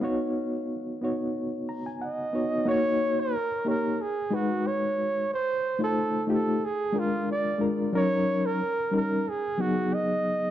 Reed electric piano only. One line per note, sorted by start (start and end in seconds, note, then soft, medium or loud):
0.01 0.74 B3 loud
0.01 0.75 D#4 medium
0.01 0.75 F#4 medium
0.01 0.76 C#5 loud
1.01 1.97 B3 medium
1.01 1.98 D#4 medium
1.01 1.99 F#4 medium
1.01 1.99 C#5 medium
1.69 1.85 A#5 medium
1.86 2.00 G#5 medium
2.01 2.32 F#5 medium
2.33 2.58 B3 medium
2.33 2.59 D#4 medium
2.33 2.59 F#4 medium
2.33 2.59 C#5 medium
2.33 2.65 D#5 medium
2.65 3.32 A#3 loud
2.65 3.33 D#4 medium
2.65 3.33 F#4 medium
2.65 3.34 C#5 loud
3.65 3.98 A#3 medium
3.65 3.99 D#4 medium
3.65 3.99 G4 medium
3.65 4.00 C#5 medium
4.30 5.27 G#3 medium
4.30 5.27 D#4 medium
4.30 5.28 F#4 medium
4.30 5.28 B4 medium
5.79 6.16 A3 medium
5.79 6.16 D#4 medium
5.79 6.16 F4 medium
5.79 6.17 C5 medium
6.27 6.61 A3 medium
6.27 6.61 D#4 medium
6.27 6.62 F4 medium
6.27 6.63 G4 medium
6.93 7.43 G#3 medium
6.93 7.43 D4 medium
6.93 7.44 F4 medium
6.93 7.44 A#4 medium
7.58 7.84 G#3 medium
7.58 7.85 D4 medium
7.58 7.85 F4 medium
7.58 7.86 A#4 medium
7.93 8.59 F#3 medium
7.93 8.60 C#4 medium
7.93 8.60 D#4 medium
7.93 8.61 A#4 loud
8.91 9.25 G3 medium
8.91 9.25 C#4 medium
8.91 9.26 D#4 medium
8.91 9.26 A#4 medium
9.57 10.51 F#3 medium
9.57 10.51 B3 medium
9.57 10.51 D#4 medium
9.57 10.51 G#4 medium